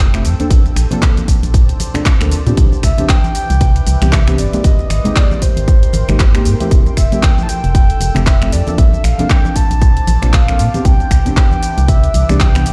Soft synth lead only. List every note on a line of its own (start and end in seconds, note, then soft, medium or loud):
2.83 3.11 E5 loud
3.09 3.35 G5 loud
3.35 4.14 G5 loud
4.13 4.40 E5 loud
4.39 4.66 D5 loud
4.64 4.90 D#5 loud
4.90 5.18 D#5 loud
5.16 5.43 D5 loud
5.42 6.45 C5 loud
6.97 7.24 E5 medium
7.23 7.42 G5 loud
7.43 7.50 A5 medium
7.49 8.28 G5 loud
8.27 8.54 E5 medium
8.52 8.80 D5 medium
8.78 9.06 E5 loud
9.04 9.31 F5 loud
9.30 9.55 G5 loud
9.56 10.35 A5 loud
10.33 10.85 F5 loud
10.85 11.33 G5 loud
11.37 11.90 G5 loud
11.89 12.31 E5 loud
12.29 12.42 D5 loud
12.40 12.73 G5 loud